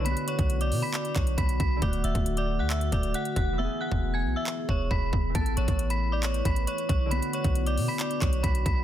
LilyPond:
<<
  \new Staff \with { instrumentName = "Synth bell" } { \time 4/4 \key b \dorian \tempo 4 = 136 <b'' b'''>8 <cis'' cis'''>8. <d'' d'''>8 <b'' b'''>16 <d'' d'''>8 <cis'' cis'''>8 <b'' b'''>8 <b'' b'''>8 | <d'' d'''>8 <e'' e'''>8. <d'' d'''>8 <fis'' fis'''>16 <e'' e'''>8 <d'' d'''>8 <fis'' fis'''>8 <fis'' fis'''>8 | <e'' e'''>8 <fis'' fis'''>8. <gis'' gis'''>8 <e'' e'''>16 r8 <cis'' cis'''>8 <b'' b'''>4 | <a'' a'''>8 <cis'' cis'''>8. <b'' b'''>8 <d'' d'''>16 <cis'' cis'''>8 <b'' b'''>8 <cis'' cis'''>8 <cis'' cis'''>8 |
<b'' b'''>8 <cis'' cis'''>8. <d'' d'''>8 <b'' b'''>16 <d'' d'''>8 <cis'' cis'''>8 <b'' b'''>8 <b'' b'''>8 | }
  \new Staff \with { instrumentName = "Ambient pad" } { \time 4/4 \key b \dorian <b d' fis'>1 | <d a>1 | <e b gis'>1 | <a e' b'>1 |
<b d' fis'>1 | }
  \new Staff \with { instrumentName = "Harp" } { \time 4/4 \key b \dorian <d b fis'>1 | <d a fis'>1 | <e b gis'>1 | <e b a'>1 |
<d b fis'>1 | }
  \new Staff \with { instrumentName = "808-style bass" } { \clef bass \time 4/4 \key b \dorian b,,16 r8 b,,8. b,16 r8. b,,8 b,,8 b,,8 | d,,8 d,,16 d,,4 d,8. d,,8 r8 e,,8~ | e,,16 r8 e,,8. b,,16 r8. e,,8 e,,8 e,,8 | a,,8 a,,16 a,,4.~ a,,16 a,,8 r8 b,,8~ |
b,,16 r8 b,,8. b,16 r8. b,,8 b,,8 b,,8 | }
  \new DrumStaff \with { instrumentName = "Drums" } \drummode { \time 4/4 hh16 hh16 hh16 <hh bd>16 hh16 hh16 hho8 <hc hh>16 hh16 <hc hh bd>16 hh16 <hh bd>16 hh16 <hh bd>8 | <hh bd>16 hh16 hh16 <hh bd>16 hh16 hh8. <hc hh>16 hh16 <hh bd>16 hh16 hh16 hh16 <hh bd>8 | r8. bd16 r4 hc8 bd8 bd8 bd8 | <hh bd>16 hh16 hh16 <hh bd>16 hh16 hh8. <hc hh>16 hh16 <hh bd>16 hh16 hh16 hh16 <hh bd>8 |
hh16 hh16 hh16 <hh bd>16 hh16 hh16 hho8 <hc hh>16 hh16 <hc hh bd>16 hh16 <hh bd>16 hh16 <hh bd>8 | }
>>